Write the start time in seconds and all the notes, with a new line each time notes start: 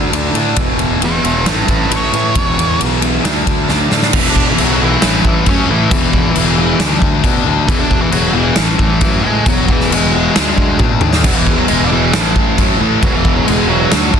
Already playing: D3 A3 D4
0.11 D2 D3 A3 D4, ride
0.33 A2 D3 A3 D4, ride
0.56 E1 E2 B2 E3, kick, ride
0.77 E1, ride
1.00 E1 E2 B2 E3, ride
1.05 G#4 E5
1.23 E1 E2 B2 E3 G#4 E5, ride
1.43 A1 A2 E3, snare, ride
1.48 A3 G4 B4
1.68 A1 G4 B4, kick, ride
1.90 A1 A2 E3 A3, ride
1.96 C#5
2.12 A2 E3 A3, ride
2.35 E1 E2 B2 E3, kick, ride
2.58 E2, ride
2.79 B1 E2 B2 E3, ride
3.01 E2 B2 E3, ride
3.24 D2 D3 A3 D4, snare, ride
3.47 D2, kick, ride
3.69 D2 D3 A3 D4, snare
3.91 A2 D3 A3 D4, snare
4.02 snare
4.13 E1 E2 B2 E3, kick, crash
4.19 E4
4.28 D4 D5
4.36 kick
4.50 E3 E4
4.58 B1 E2 B2 E3 F#3, crash
4.64 F#4
4.81 E2 B2 E3 E4
5.02 A1 A2 E3 A3, snare, crash
5.24 A1 E3 E4, kick
5.46 F#2 A2 E3 A3 C#4 C#5, kick, crash
5.68 A2 E3 A3 E4
5.91 E1 E2 B2 E3, kick, crash
6.13 kick
6.35 E1 E2 B2 E3, crash
6.58 E2 B2 E3
6.79 D2 D3 A3 D4, snare, crash
7.02 D2, kick
7.24 B2 D3 A3 D4, kick, crash
7.45 D2 D3 A3 D4
7.68 E1 E2 B2 E3 E4, kick, crash
7.79 D4 D5
7.91 kick
8.01 E3 E4
8.12 E1 E2 B2 E3 F#3 F#4, crash
8.34 E2 B2 E3 E4
8.56 A1 A2 E3 A3, snare, crash
8.78 A1 E3 E4, kick
9.01 F#2 A2 E3 A3, kick, crash
9.23 A2 E3 G#3 A3 G#4
9.46 E1 E2 B2 E3 F#3 F#4, kick, crash
9.68 E3 E4, kick
9.81 snare
9.91 E1 E2 B2 E3 G#3 G#4, crash
10.13 E2 B2 E3
10.36 D2 D3 A3 D4, snare, crash
10.57 D2, kick
10.78 B2 D3 A3 D4, kick, high tom
11.01 D#2 D3 A3 D4, mid tom
11.13 snare
11.24 E1 E2 B2 E3 F#3 F#4, kick, crash
11.35 E3 E4
11.47 kick
11.57 F#3 F#4
11.68 E1 E2 B2 E3 G#3 G#4, crash
11.84 D4
11.91 E2 B2 E3 E4
12.13 A1 A2 E3 A3, snare, crash
12.35 A1, kick
12.58 F#2 A2 E3 A3, kick, crash
12.81 A2 E3 A3
13.03 E1 E2 B2 E3 F#3 F#4, kick, crash
13.14 E3 E4
13.25 kick
13.35 F#3 F#4
13.46 E1 E2 B2 E3 G#3 G#4, crash
13.68 E2 B2 E3 F#3 F#4
13.91 D2 D3 A3 D4, snare, crash
14.14 D2, kick